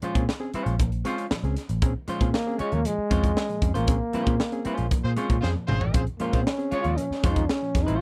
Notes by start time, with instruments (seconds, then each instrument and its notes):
0.02 reed electric piano A#2 F3, clean electric guitar G#3 C#4 F4 C5, muted picked electric bass stroke, closed hi-hat
0.14 picked electric bass A#2, reed electric piano C4 C#4 G#4, kick, closed hi-hat
0.29 snare
0.40 reed electric piano C4 C#4 G#4
0.54 clean electric guitar G#3 C#4 F4 C5, muted picked electric bass stroke, closed hi-hat
0.66 picked electric bass A#1, reed electric piano A#2 F3, closed hi-hat
0.79 picked electric bass A#1, reed electric piano A#2 F3, kick, closed hi-hat
0.92 closed hi-hat
1.05 clean electric guitar G#3 C#4 F4 C5, reed electric piano C4 C#4 G#4, closed hi-hat
1.18 closed hi-hat
1.31 reed electric piano A#2 F3, muted picked electric bass stroke, snare
1.44 picked electric bass C#2, reed electric piano C4 C#4 G#4, closed hi-hat
1.57 snare, closed hi-hat
1.69 picked electric bass A1, closed hi-hat
1.82 picked electric bass A#1, reed electric piano C4 C#4 G#4, kick, closed hi-hat
2.08 reed electric piano A#2 F3, clean electric guitar G#3 C#4 F4 C5, muted picked electric bass stroke, closed hi-hat
2.20 picked electric bass A#2, reed electric piano C4 C#4 G#4, kick, closed hi-hat
2.34 trombone A#3, snare
2.46 reed electric piano C4 C#4 G#4
2.58 clean electric guitar G#3 C#4 F4 C#5, trombone G#3, muted picked electric bass stroke, closed hi-hat
2.72 picked electric bass D#2, reed electric piano A#2 F3, trombone A#3, closed hi-hat
2.85 reed electric piano A#2 F3, trombone G#3, closed hi-hat
2.98 muted picked electric bass stroke
3.10 picked electric bass F2, clean electric guitar G#3 C#4 F4 C5, reed electric piano C4 C#4 G#4, kick, closed hi-hat
3.24 kick, closed hi-hat
3.36 reed electric piano C#4 G#4, snare
3.49 reed electric piano A#2 F3, closed hi-hat
3.62 picked electric bass F2, reed electric piano C#4 G#4, kick, closed hi-hat
3.74 picked electric bass A1, clean electric guitar G#3 C#4 F4 C5, trombone A#3, closed hi-hat
3.87 picked electric bass A#1, reed electric piano C4 C#4 G#4, kick, closed hi-hat
4.13 reed electric piano A#2 F3, clean electric guitar G#3 C#4 F4 C5, muted picked electric bass stroke, closed hi-hat
4.26 picked electric bass A#2, reed electric piano C4 C#4 G#4, kick, closed hi-hat
4.40 snare
4.52 reed electric piano C4 C#4 G#4, closed hi-hat
4.65 clean electric guitar G#3 C#4 F4 C5, muted picked electric bass stroke, closed hi-hat
4.78 picked electric bass A#1, reed electric piano A#2 F3, closed hi-hat
4.91 reed electric piano A#2 F3, kick, closed hi-hat
5.04 picked electric bass A#2, horn section F4 G#4 C5
5.16 clean electric guitar G#3 C#4 F4 C5, reed electric piano C4 C#4 G#4, closed hi-hat
5.30 picked electric bass A#2, kick, closed hi-hat
5.41 picked electric bass F2, reed electric piano C#4 G#4, horn section F4 G#4 C5, snare
5.56 reed electric piano A#2 F3
5.68 picked electric bass G#1, reed electric piano C#4 G#4, horn section F4 G#4 C5, mid tom
5.81 picked electric bass A1, floor tom
5.94 picked electric bass A#1, reed electric piano C4 C#4 G#4, horn section F4 G#4 C5, kick, closed hi-hat
6.07 closed hi-hat
6.20 reed electric piano A#2 F3, clean electric guitar G#3 C#4 F4 C5, trombone A#3, muted picked electric bass stroke, closed hi-hat
6.33 picked electric bass A#2, reed electric piano C4 C#4 G#4, horn section F4 G#4 C5, kick, closed hi-hat
6.45 trombone C#4, snare
6.58 reed electric piano C4 C#4 G#4, closed hi-hat
6.72 clean electric guitar G#3 C#4 F4 C#5, horn section F4 G#4 C#5, muted picked electric bass stroke, closed hi-hat
6.81 reed electric piano A#2 F3, trombone F4, closed hi-hat
6.85 picked electric bass D#2
6.97 reed electric piano A#2 F3, trombone C#4, closed hi-hat
7.11 muted picked electric bass stroke, snare
7.23 picked electric bass F2, clean electric guitar G#3 C#4 F4 C5, reed electric piano C4 C#4 G#4, kick, closed hi-hat
7.31 trombone D#4
7.36 reed electric piano C#4 G#4, kick, closed hi-hat
7.49 trombone C#4, reed electric piano C#4 G#4, snare
7.63 reed electric piano A#2 F3
7.75 picked electric bass F2, reed electric piano C#4 G#4, kick, snare, closed hi-hat
7.83 trombone D#4, clean electric guitar C5
7.88 picked electric bass A1, clean electric guitar G#3 C#4 F4, closed hi-hat